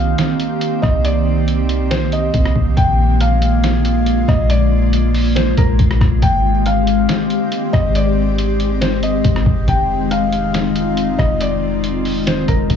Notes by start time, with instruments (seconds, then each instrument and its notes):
Already playing: 808-style bass C2, ambient pad D#3 A#3 C4 G4, synth texture A#3 D#4 C5, felt piano F5
0.18 snare, closed hi-hat
0.40 closed hi-hat
0.61 closed hi-hat
0.82 808-style bass C2, felt piano D#5, kick, cross-stick
1.05 felt piano D5, closed hi-hat
1.48 closed hi-hat
1.69 closed hi-hat
1.91 felt piano C5, snare, closed hi-hat
2.12 felt piano D#5, closed hi-hat
2.34 808-style bass C2, kick, closed hi-hat
2.46 cross-stick
2.56 808-style bass C2, kick
2.77 808-style bass A#1, ambient pad D3 G#3 F4, synth texture G#4 D5, felt piano G5, kick, closed hi-hat
3.20 felt piano F5, closed hi-hat
3.42 closed hi-hat
3.64 snare, closed hi-hat
3.85 closed hi-hat
4.06 closed hi-hat
4.28 808-style bass A#1, felt piano D#5, kick, cross-stick
4.50 felt piano D5, closed hi-hat
4.93 closed hi-hat
5.14 open hi-hat
5.36 felt piano C5, snare, closed hi-hat
5.57 808-style bass A#1, felt piano A#4, kick, closed hi-hat
5.79 808-style bass A#1, kick, closed hi-hat
5.91 cross-stick
6.01 808-style bass A#1, kick, cross-stick
6.22 808-style bass G#1, ambient pad D#3 C4 G4, synth texture G#3 G4 C5, felt piano G5, kick, closed hi-hat
6.66 felt piano F5, closed hi-hat
6.87 closed hi-hat
7.09 snare, closed hi-hat
7.30 closed hi-hat
7.52 closed hi-hat
7.73 808-style bass G#1, felt piano D#5, kick, cross-stick
7.95 felt piano D5, closed hi-hat
8.38 closed hi-hat
8.60 closed hi-hat
8.81 felt piano C5, snare, closed hi-hat
9.03 felt piano D#5, closed hi-hat
9.24 808-style bass G#1, kick, closed hi-hat
9.36 cross-stick
9.46 808-style bass G#1, kick
9.68 808-style bass F1, ambient pad C4 F4, synth texture D#4 F4, felt piano G5, kick, closed hi-hat
10.11 felt piano F5, closed hi-hat
10.32 closed hi-hat
10.54 snare, closed hi-hat
10.76 closed hi-hat
10.97 closed hi-hat
11.18 808-style bass F1, felt piano D#5, kick, cross-stick
11.41 felt piano D5, closed hi-hat
11.84 closed hi-hat
12.05 open hi-hat
12.27 felt piano C5, snare, closed hi-hat
12.48 808-style bass F1, felt piano A#4, kick, closed hi-hat
12.70 808-style bass F1, kick, closed hi-hat